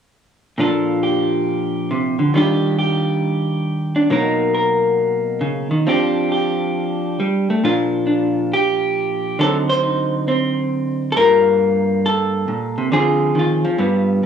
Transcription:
0.58 A#2 F3 D4 F4 A4
1.03 G4
1.91 C3
2.19 D3
2.34 D#3 G3 D4 F4 G4
2.79 G4
3.96 D4
4.10 B2 F#3 A#3 D#4 A#4
4.54 A#4
5.41 C#3
5.71 D#3
5.87 F3 C4 D4 G4
6.32 G4
7.20 G3
7.50 A3
7.64 A#2 F3 D4 F4
8.07 D4
8.53 G4
9.39 D3 F#3 C4 D#4 A4
9.69 C5
9.83 D#4
10.28 C4
11.12 A4
11.16 G2 G3 A#3 F4 A#4
12.06 A4
12.48 A#2
12.78 C3
12.92 D3 F3 C4 F4 G#4
13.35 D#3
13.39 F4
13.65 F3
13.78 G2 G3 B3

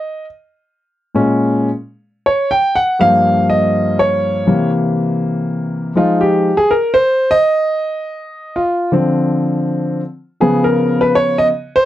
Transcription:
Already playing: D#5
1.15 A#2 G#3 C#4
2.26 C#5
2.51 G5
2.75 F#5
2.99 G2 F3 A#3 F5
3.50 D#5
3.99 C#5
4.47 C3 E3 A#3
5.96 F3 G#3 D#4 F4
6.21 G4
6.57 G#4
6.71 A#4
6.94 C5
7.31 D#5
8.56 F4
8.92 D3 F3 C4
10.40 C#3 F3 B3 G#4
10.64 A#4
11.01 B4
11.15 C#5
11.38 D#5
11.76 C5

